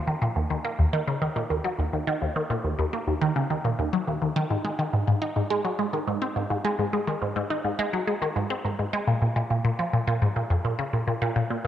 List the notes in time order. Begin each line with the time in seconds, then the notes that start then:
0.07 D#3
0.22 A#2
0.36 D#2
0.50 D#2
0.65 A#3
0.79 D#2
0.93 D#3
1.07 C#3
1.22 D#3
1.36 A#2
1.50 D#2
1.64 F#3
1.79 D#2
1.93 D#2
2.07 D#3
2.22 D#2
2.36 D#3
2.50 A#2
2.64 D#2
2.79 D#2
2.93 A#3
3.07 D#2
3.21 D#3
3.36 C#3
3.50 D#3
3.65 A#2
3.79 D#2
3.93 F#3
4.07 D#2
4.22 D#2
4.36 D#3
4.50 G#2
4.65 G#3
4.79 D#3
4.93 G#2
5.08 G#2
5.22 D#4
5.36 G#2
5.50 G#3
5.65 F#3
5.79 G#3
5.93 D#3
6.08 G#2
6.22 C4
6.36 G#2
6.50 G#2
6.65 G#3
6.79 G#2
6.93 G#3
7.07 D#3
7.22 G#2
7.36 G#2
7.50 D#4
7.65 G#2
7.79 G#3
7.93 F#3
8.07 G#3
8.22 D#3
8.36 G#2
8.50 C4
8.65 G#2
8.79 G#2
8.93 G#3
9.07 A#2
9.22 A#2
9.36 A#2
9.50 A#2
9.65 A#2
9.79 F3
9.93 A#2
10.07 A#2
10.22 G#2
10.36 A#2
10.50 F2
10.65 A#2
10.79 C#3
10.93 A#2
11.07 A#2
11.22 A#2
11.36 A#2
11.50 A#2